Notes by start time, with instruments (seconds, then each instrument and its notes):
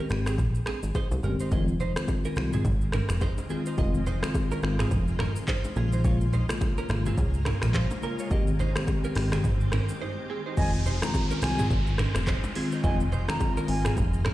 0.10 analog synth bass G#1, tine electric piano D#3 G#3 C4 G4, finger snap, cross-stick, shaker
0.26 clean electric guitar C4 G#4, finger snap, cross-stick, shaker
0.38 analog synth bass A#1, kick, low conga, shaker
0.55 shaker
0.66 clean electric guitar C4 G#4, finger snap, cross-stick, low bongo, shaker
0.83 analog synth bass G#1, shaker
0.95 clean electric guitar D#4 C5, kick, high bongo, shaker
1.11 analog synth bass C2, low bongo, shaker
1.23 analog synth bass G1, tine electric piano D#3 G#3 C4 G4, clean electric guitar C#4 A#4, shaker
1.40 clean electric guitar D#4 C5, shaker
1.51 analog synth bass F1, tine electric piano D#3 G#3 C4 F4, ambient pad D#3 G#3 C4 F4, clean electric guitar G#4 D#5, kick, low conga, shaker
1.68 shaker
1.80 clean electric guitar D#4 C5, low conga, shaker
1.96 tine electric piano D#3 G#3 C4 F4, finger snap, cross-stick, shaker
2.08 kick, high bongo, shaker
2.25 clean electric guitar C#4 A#4, shaker
2.36 analog synth bass C2, tine electric piano D#3 G#3 C4 F4, finger snap, cross-stick, shaker
2.53 clean electric guitar C4 G#4, mid tom, high bongo, shaker
2.65 analog synth bass G#1, kick, low conga, shaker
2.81 shaker
2.92 clean electric guitar C#4 A#4, finger snap, cross-stick, mid tom, low bongo, shaker
3.09 analog synth bass F1, finger snap, cross-stick, shaker
3.21 clean electric guitar D#4 C5, kick, high bongo, shaker
3.38 low bongo, shaker
3.49 tine electric piano D#3 G#3 C4 F4, clean electric guitar C4 G#4, shaker
3.66 clean electric guitar D#4 C5, shaker
3.78 analog synth bass F1, tine electric piano D#3 G#3 C4 F4, clean electric guitar G#4 D#5, kick, low conga, shaker
3.94 shaker
4.06 clean electric guitar D#4 C5, low conga, shaker
4.22 tine electric piano D#3 G#3 C4 F4, finger snap, cross-stick, shaker
4.34 kick, high bongo, shaker
4.51 clean electric guitar C#4 A#4, shaker
4.63 analog synth bass G#1, tine electric piano D#3 G#3 C4 F4, finger snap, cross-stick, shaker
4.79 clean electric guitar C4 G#4, finger snap, cross-stick, mid tom, high bongo, shaker
4.91 analog synth bass F1, kick, low conga, shaker
5.08 shaker
5.19 clean electric guitar C#4 A#4, finger snap, cross-stick, mid tom, low bongo, shaker
5.36 shaker
5.48 clean electric guitar D#4 C5, kick, clap, high bongo, shaker
5.64 low bongo, shaker
5.76 analog synth bass A#1, tine electric piano C#3 G#3 A#3 F4, ambient pad C#3 G#3 A#3, clean electric guitar C#4 G#4, shaker
5.93 clean electric guitar D#4 C5, shaker
6.04 tine electric piano C#3 G#3 A#3 F4, clean electric guitar F4 C#5, kick, swell, low conga, shaker
6.21 shaker
6.33 clean electric guitar D#4 C5, low conga, shaker
6.49 tine electric piano C#3 G#3 A#3 F4, finger snap, cross-stick, shaker
6.61 kick, high bongo, shaker
6.78 clean electric guitar C#4 A#4, shaker
6.89 analog synth bass G#1, tine electric piano C#3 G#3 A#3 F4, finger snap, cross-stick, shaker
7.06 clean electric guitar C4 G#4, mid tom, high bongo, shaker
7.18 analog synth bass C#2, kick, low conga, shaker
7.34 shaker
7.45 clean electric guitar C#4 A#4, finger snap, cross-stick, mid tom, low bongo, shaker
7.62 analog synth bass A#1, finger snap, cross-stick, shaker
7.74 clean electric guitar F4 C5, kick, clap, high bongo, shaker
7.91 low bongo, shaker
8.02 tine electric piano C#3 G#3 A#3 F4, clean electric guitar C#4 A#4, shaker
8.19 clean electric guitar F4 C#5, shaker
8.30 analog synth bass G#1, tine electric piano D#3 G#3 C4 G4, ambient pad D#3 C4 G4, clean electric guitar G4 D#5, kick, low conga, shaker
8.47 shaker
8.59 clean electric guitar D#4 C5, low conga, shaker
8.75 tine electric piano D#3 G#3 C4 G4, finger snap, cross-stick, shaker
8.87 kick, high bongo, shaker
9.04 clean electric guitar C#4 A#4, shaker
9.15 analog synth bass G#1, tine electric piano D#3 G#3 C4 G4, finger snap, cross-stick, open hi-hat, shaker
9.32 clean electric guitar C4 G#4, finger snap, cross-stick, mid tom, high bongo, shaker
9.44 analog synth bass G#1, kick, low conga, shaker
9.61 shaker
9.72 clean electric guitar C#4 A#4, finger snap, cross-stick, mid tom, low bongo, shaker
9.89 shaker
10.02 clean electric guitar D#4 C5
10.30 clean electric guitar C4 G#4
10.46 clean electric guitar D#4 C5
10.57 analog synth bass F1, tine electric piano D#3 G#3 C4 F4, ambient pad D#3 G#3 C4 F4, clean electric guitar G#4 D#5, flute G#5, kick, downlifter, low conga, shaker
10.74 shaker
10.86 clean electric guitar D#4 C5, low conga, shaker
11.02 tine electric piano D#3 G#3 C4 F4, flute A#5, finger snap, cross-stick, low bongo, shaker
11.14 kick, high bongo, shaker
11.31 clean electric guitar C#4 A#4, shaker
11.42 analog synth bass C2, tine electric piano D#3 G#3 C4 F4, flute G#5, finger snap, cross-stick, open hi-hat, shaker
11.59 clean electric guitar C4 G#4, mid tom, high bongo, shaker
11.71 analog synth bass G#1, kick, low conga, shaker
11.87 shaker
11.98 clean electric guitar C#4 A#4, finger snap, cross-stick, mid tom, low bongo, shaker
12.15 analog synth bass F1, finger snap, cross-stick, shaker
12.27 clean electric guitar D#4 C5, kick, clap, high bongo, shaker
12.44 low bongo, shaker
12.55 tine electric piano D#3 G#3 C4 F4, clean electric guitar C4 G#4, open hi-hat, shaker
12.72 clean electric guitar D#4 C5, shaker
12.83 analog synth bass F1, tine electric piano D#3 G#3 C4 F4, ambient pad A#3, clean electric guitar G#4 D#5, flute G#5, kick, low conga, shaker
13.00 shaker
13.12 clean electric guitar D#4 C5, low conga, shaker
13.28 tine electric piano D#3 G#3 C4 F4, flute A#5, finger snap, cross-stick, low bongo, shaker
13.40 kick, high bongo, shaker
13.57 clean electric guitar C#4 A#4, shaker
13.68 analog synth bass G#1, tine electric piano D#3 G#3 C4 F4, flute G#5, open hi-hat, shaker
13.85 clean electric guitar C4 G#4, finger snap, cross-stick, mid tom, high bongo, shaker
13.97 analog synth bass F1, kick, low conga, shaker
14.13 shaker
14.25 clean electric guitar C#4 A#4, finger snap, cross-stick, mid tom, low bongo, shaker